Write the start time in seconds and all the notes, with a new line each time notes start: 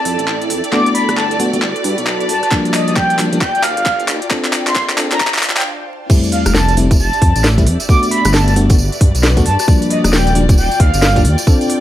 Already playing: E4 A4 D5 A5
0.05 F2, open hi-hat
0.19 A1, closed hi-hat
0.28 clap
0.42 closed hi-hat
0.50 F2, open hi-hat
0.64 closed hi-hat
0.72 A3 B3 D4 F#4 D6, clap
0.86 closed hi-hat
0.95 B5, open hi-hat
1.03 B4
1.09 G1, cross-stick, closed hi-hat
1.17 A5, clap
1.31 A5, closed hi-hat
1.40 A3 B3 D4 F#4, open hi-hat
1.53 A3 B3 D4 F#4 A5, closed hi-hat
1.62 G1, clap
1.76 closed hi-hat
1.84 G2, open hi-hat
1.98 B1, closed hi-hat
2.07 clap
2.21 closed hi-hat
2.29 G2 A5, open hi-hat
2.43 A5, cross-stick, closed hi-hat
2.51 F3 G3 A#3 D4 F4, kick, clap
2.65 D5, closed hi-hat
2.74 D#5, clap, open hi-hat
2.88 D#1 D#5, closed hi-hat
2.96 G5, kick, clap
3.06 G5
3.10 closed hi-hat
3.19 F3 G3 A#3 D4, clap, open hi-hat
3.33 F3 G3 A#3 D4, closed hi-hat
3.41 G5, kick, clap
3.55 closed hi-hat
3.63 D#2 F5, clap, open hi-hat
3.77 G1, closed hi-hat
3.86 F5, kick, clap
4.00 closed hi-hat
4.08 D#2, clap, open hi-hat
4.22 closed hi-hat
4.31 C4 D4 F4 A4, kick, clap
4.44 clap, closed hi-hat
4.53 clap, open hi-hat
4.67 A#1 C6, clap, closed hi-hat
4.75 C6, kick, clap
4.89 clap, closed hi-hat
4.98 C4 D4 F4 A4, clap, open hi-hat
5.12 C4 D4 F4 A4 A#5, clap, closed hi-hat
5.20 A#1, kick, clap, swell
5.27 clap
5.34 clap, closed hi-hat
5.38 clap
5.43 clap, open hi-hat
5.50 clap
5.56 G5, clap, closed hi-hat
5.61 clap
6.10 G3 A3 C4 E4 G4 D5, kick, tambourine, crash, sub drop
6.24 closed hi-hat, tambourine
6.32 F5, open hi-hat
6.45 F1 E5 F5, cross-stick, closed hi-hat, tambourine
6.54 A5, snare, tambourine
6.68 closed hi-hat, tambourine
6.77 G3 A3 C4 E4, open hi-hat
6.91 G3 A3 C4 E4, kick, closed hi-hat, tambourine
6.99 F1 A5, tambourine
7.13 closed hi-hat, tambourine
7.22 F2, kick, open hi-hat
7.36 A1, closed hi-hat, tambourine
7.44 snare, tambourine
7.58 G3 A3 C4 E4, kick, closed hi-hat, tambourine
7.66 F2, open hi-hat
7.80 closed hi-hat, tambourine
7.89 A3 B3 D4 F#4 D6, kick, tambourine
8.03 B4, closed hi-hat, tambourine
8.11 B5, open hi-hat
8.25 G1, cross-stick, closed hi-hat, tambourine
8.33 A5, snare, tambourine
8.48 A5, closed hi-hat, tambourine
8.56 A3 B3 D4 F#4, open hi-hat
8.70 A3 B3 D4 F#4, kick, closed hi-hat, tambourine
8.78 G1, tambourine
8.92 closed hi-hat, tambourine
9.01 G2, kick, open hi-hat
9.15 B1, closed hi-hat, tambourine
9.23 snare, tambourine
9.37 A3 B3 D4 F#4, kick, closed hi-hat, tambourine
9.46 G2 A5, open hi-hat
9.59 A5, cross-stick, closed hi-hat, tambourine
9.68 F3 G3 A#3 D4 F4, kick, tambourine
9.82 closed hi-hat, tambourine
9.88 D#5 G5, open hi-hat
9.95 D5
10.04 D#1 D#5, cross-stick, closed hi-hat, tambourine
10.13 G5, snare, tambourine
10.27 closed hi-hat, tambourine
10.35 F3 G3 A#3 D4, open hi-hat
10.49 F3 G3 A#3 D4, kick, closed hi-hat, tambourine
10.58 D#1 G5, tambourine
10.71 closed hi-hat, tambourine
10.80 D#2 F5, kick, open hi-hat
10.94 G1, closed hi-hat, tambourine
11.02 F5, snare, tambourine
11.16 F3 G3 A#3 D4, kick, closed hi-hat, tambourine
11.25 D#2, open hi-hat
11.38 closed hi-hat, tambourine
11.47 C4 D4 F4 A4, kick, tambourine
11.61 closed hi-hat, tambourine
11.70 open hi-hat